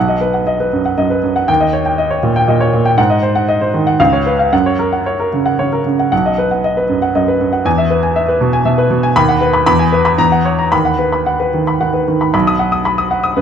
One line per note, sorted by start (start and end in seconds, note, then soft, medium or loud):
0.00 1.44 B1 soft
0.00 0.16 F#5 medium
0.08 0.29 D#5 soft
0.21 0.42 B4 soft
0.34 0.55 F#5 soft
0.47 0.68 D#5 soft
0.60 0.81 B4 soft
0.73 0.93 F#2 soft
0.86 1.06 F#5 soft
0.98 1.22 F#2 soft
0.98 1.18 D#5 soft
1.10 1.31 B4 soft
1.23 1.43 F#2 soft
1.36 1.48 F#5 soft
1.48 2.93 D#2 soft
1.48 1.68 G5 medium
1.60 1.81 D#5 soft
1.73 1.93 C#5 soft
1.86 2.06 G5 soft
1.98 2.18 D#5 soft
2.10 2.31 C#5 soft
2.23 2.43 A#2 soft
2.36 2.56 G5 medium
2.48 2.72 A#2 soft
2.48 2.68 D#5 soft
2.60 2.80 C#5 soft
2.73 2.93 A#2 soft
2.85 2.98 G5 medium
2.98 3.96 G#2 medium
2.98 3.18 F#5 medium
3.10 3.30 D#5 soft
3.23 3.43 C5 soft
3.35 3.56 F#5 soft
3.48 3.69 D#5 medium
3.61 3.82 C5 soft
3.74 3.94 D#3 soft
3.87 4.00 F#5 medium
4.00 4.51 C#2 medium
4.00 4.21 F5 medium
4.13 4.34 C#5 soft
4.26 4.47 B4 soft
4.39 4.52 F5 soft
4.52 6.08 F#2 medium
4.52 4.74 F#5 medium
4.66 4.87 C#5 soft
4.79 5.00 A#4 soft
4.93 5.14 F#5 soft
5.06 5.27 C#5 soft
5.20 5.40 A#4 soft
5.33 5.54 C#3 soft
5.46 5.67 F#5 soft
5.59 5.84 C#3 soft
5.59 5.80 C#5 soft
5.73 5.94 A#4 soft
5.86 6.07 C#3 soft
5.99 6.10 F#5 soft
6.12 7.62 B1 soft
6.12 6.33 F#5 medium
6.26 6.46 D#5 soft
6.38 6.59 B4 soft
6.51 6.72 F#5 soft
6.64 6.84 D#5 soft
6.77 6.97 B4 soft
6.89 7.10 F#2 soft
7.02 7.23 F#5 soft
7.15 7.39 F#2 soft
7.15 7.35 D#5 soft
7.28 7.48 B4 soft
7.41 7.61 F#2 soft
7.53 7.66 F#5 soft
7.65 9.11 E2 medium
7.65 7.86 G#5 medium
7.78 7.98 E5 soft
7.90 8.11 B4 soft
8.03 8.23 G#5 soft
8.16 8.36 E5 soft
8.28 8.48 B4 soft
8.41 8.61 B2 soft
8.53 8.73 G#5 medium
8.65 8.89 B2 soft
8.65 8.85 E5 soft
8.78 8.98 B4 soft
8.90 9.11 B2 soft
9.03 9.16 G#5 medium
9.16 9.65 D#2 medium
9.16 9.36 B5 medium
9.29 9.49 F#5 medium
9.41 9.62 B4 soft
9.53 9.65 B5 medium
9.66 10.17 E2 medium
9.66 9.87 B5 medium
9.79 10.00 G#5 medium
9.92 10.13 B4 soft
10.05 10.18 B5 medium
10.18 10.70 E2 medium
10.18 10.40 A#5 medium
10.32 10.53 F#5 soft
10.45 10.67 C#5 soft
10.59 10.72 A#5 soft
10.72 12.30 D#2 soft
10.72 10.94 B5 medium
10.85 11.07 F#5 soft
10.99 11.21 B4 soft
11.12 11.34 B5 soft
11.26 11.48 F#5 soft
11.40 11.61 B4 soft
11.54 11.75 D#3 soft
11.67 11.89 B5 soft
11.80 12.06 D#3 soft
11.80 12.02 F#5 soft
11.94 12.15 B4 soft
12.08 12.29 D#3 soft
12.21 12.32 B5 soft
12.34 13.41 B1 medium
12.34 12.54 B5 soft
12.47 12.68 D#6 medium
12.59 12.80 F#5 soft
12.72 12.93 D#6 soft
12.85 13.06 B5 medium
12.98 13.19 D#6 soft
13.11 13.31 F#5 soft
13.24 13.41 D#6 medium
13.36 13.41 F#2 soft
13.36 13.41 B4 soft